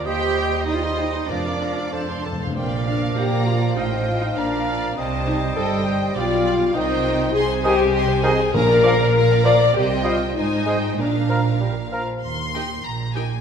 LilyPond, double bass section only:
\new Staff \with { instrumentName = "Double bass section" } { \clef bass \time 2/4 \key bes \major \tempo 4 = 99 ees,2 | f,4. r8 | bes,,4 bes,4 | a,,4 bes,,4 |
c,4 g,,4 | b,,4 c,4 | \key ees \major c,2 | bes,,2 |
c,4 aes,,4 | bes,,4. r8 | ees,4 bes,,4 | }